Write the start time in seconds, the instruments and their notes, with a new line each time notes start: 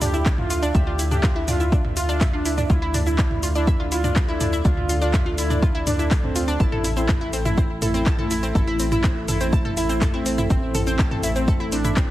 Already playing: analog synth bass D2, analog synth pad D4 A4 E5
0.01 synth arpeggio sound D4 D5, analog synth lead G4, mid tom, open hi-hat, shaker
0.14 synth arpeggio sound E4 E5, shaker
0.26 synth arpeggio sound D4 D5, kick, clap, shaker
0.38 analog synth lead F4, mid tom
0.50 synth arpeggio sound F4 F5, open hi-hat, shaker
0.63 synth arpeggio sound D4 D5, shaker
0.75 analog synth bass D2, analog synth lead G4, synth arpeggio sound E5 E6, kick, mid tom, shaker
0.87 synth arpeggio sound F4 F5
0.99 synth arpeggio sound E4 E5, open hi-hat, shaker
1.11 synth arpeggio sound D4 D5, analog synth lead G4, mid tom, shaker
1.23 synth arpeggio sound F4 F5, kick, clap, shaker
1.36 synth arpeggio sound E4 E5
1.48 synth arpeggio sound D4 D5, analog synth lead F4, mid tom, open hi-hat, shaker
1.60 synth arpeggio sound E4 E5, shaker
1.72 synth arpeggio sound D4 D5, kick, shaker
1.84 mid tom
1.97 synth arpeggio sound F4 F5, analog synth lead F4, open hi-hat, shaker
2.09 synth arpeggio sound D4 D5, shaker
2.21 synth arpeggio sound E5 E6, kick, clap, mid tom, open hi-hat, shaker
2.33 analog synth lead D4, synth arpeggio sound F4 F5
2.45 synth arpeggio sound E4 E5, open hi-hat, shaker
2.58 synth arpeggio sound D4 D5, mid tom, shaker
2.70 analog synth bass D2, analog synth lead E4, synth arpeggio sound F4 F5, analog synth pad D5, kick, shaker
2.82 synth arpeggio sound E4 E5
2.94 synth arpeggio sound D4 D5, mid tom, open hi-hat, shaker
3.06 synth arpeggio sound E4 E5, analog synth lead E4, shaker
3.19 synth arpeggio sound D4 D5, kick, clap, shaker
3.31 mid tom
3.43 synth arpeggio sound F4 F5, open hi-hat, shaker
3.55 synth arpeggio sound D4 D5, analog synth lead E4, shaker
3.67 synth arpeggio sound E5 E6, kick, mid tom, shaker
3.80 synth arpeggio sound F4 F5
3.92 synth arpeggio sound E4 E5, analog synth lead F4, open hi-hat, shaker
4.04 synth arpeggio sound D4 D5, mid tom, shaker
4.16 synth arpeggio sound F4 F5, kick, clap, shaker
4.28 synth arpeggio sound E4 E5, analog synth lead E4
4.41 synth arpeggio sound D4 D5, mid tom, open hi-hat, shaker
4.53 synth arpeggio sound E4 E5, shaker
4.65 analog synth bass D2, synth arpeggio sound D4 D5, analog synth lead F4, kick, shaker
4.77 mid tom
4.89 synth arpeggio sound F4 F5, open hi-hat, shaker
5.02 synth arpeggio sound D4 D5, analog synth lead F4, shaker
5.14 synth arpeggio sound E5 E6, kick, clap, mid tom, shaker
5.26 synth arpeggio sound F4 F5
5.38 analog synth lead E4, synth arpeggio sound E4 E5, open hi-hat, shaker
5.50 synth arpeggio sound D4 D5, mid tom, shaker
5.62 synth arpeggio sound F4 F5, kick, shaker
5.75 synth arpeggio sound E4 E5
5.87 synth arpeggio sound D4 D5, analog synth lead D4, mid tom, open hi-hat, shaker
5.99 synth arpeggio sound E4 E5, shaker
6.11 synth arpeggio sound D4 D5, kick, clap, open hi-hat, shaker
6.23 analog synth lead C4, mid tom
6.36 synth arpeggio sound F4 F5, open hi-hat, shaker
6.48 synth arpeggio sound D4 D5, shaker
6.60 analog synth bass A1, analog synth pad A3 E4, analog synth lead E4, synth arpeggio sound A5 A6, kick, shaker
6.72 synth arpeggio sound A4 A5, mid tom
6.84 synth arpeggio sound E4 E5, open hi-hat, shaker
6.97 synth arpeggio sound C4 C5, analog synth lead E4, shaker
7.09 synth arpeggio sound A4 A5, kick, clap, mid tom, shaker
7.21 synth arpeggio sound E4 E5
7.33 synth arpeggio sound C4 C5, open hi-hat, shaker
7.45 analog synth lead E4, synth arpeggio sound E4 E5, mid tom, shaker
7.58 synth arpeggio sound C4 C5, kick, shaker
7.82 analog synth lead E4, synth arpeggio sound A4 A5, mid tom, open hi-hat, shaker
7.94 synth arpeggio sound C4 C5, shaker
8.06 synth arpeggio sound A5 A6, kick, clap, shaker
8.19 analog synth lead E4, synth arpeggio sound A4 A5, mid tom
8.31 synth arpeggio sound E4 E5, open hi-hat, shaker
8.43 synth arpeggio sound C4 C5, shaker
8.55 analog synth bass A1, analog synth lead E4, synth arpeggio sound A4 A5, kick, mid tom, shaker
8.67 synth arpeggio sound E4 E5
8.80 synth arpeggio sound C4 C5, open hi-hat, shaker
8.92 analog synth lead E4, synth arpeggio sound E4 E5, mid tom, shaker
9.04 synth arpeggio sound C4 C5, kick, clap, shaker
9.28 analog synth lead E4, synth arpeggio sound A4 A5, mid tom, open hi-hat, shaker
9.41 synth arpeggio sound C4 C5, shaker
9.53 synth arpeggio sound A5 A6, kick, shaker
9.65 synth arpeggio sound A4 A5, mid tom
9.77 synth arpeggio sound E4 E5, analog synth lead E4, open hi-hat, shaker
9.89 synth arpeggio sound C4 C5, shaker
10.02 synth arpeggio sound A4 A5, kick, clap, mid tom, open hi-hat, shaker
10.14 analog synth lead C4, synth arpeggio sound E4 E5
10.26 synth arpeggio sound C4 C5, open hi-hat, shaker
10.38 synth arpeggio sound E4 E5, mid tom, shaker
10.50 analog synth bass A1, synth arpeggio sound C4 C5, analog synth lead C4, kick, shaker
10.75 synth arpeggio sound A4 A5, mid tom, open hi-hat, shaker
10.87 synth arpeggio sound C4 C5, analog synth lead C4, shaker
10.99 synth arpeggio sound A5 A6, kick, clap, shaker
11.11 synth arpeggio sound A4 A5, mid tom
11.23 synth arpeggio sound E4 E5, open hi-hat, shaker
11.36 synth arpeggio sound C4 C5, analog synth lead C4, shaker
11.48 synth arpeggio sound A4 A5, kick, mid tom, shaker
11.60 synth arpeggio sound E4 E5
11.72 synth arpeggio sound C4 C5, analog synth lead D4, open hi-hat, shaker
11.85 synth arpeggio sound E4 E5, mid tom, shaker
11.97 synth arpeggio sound C4 C5, kick, clap, shaker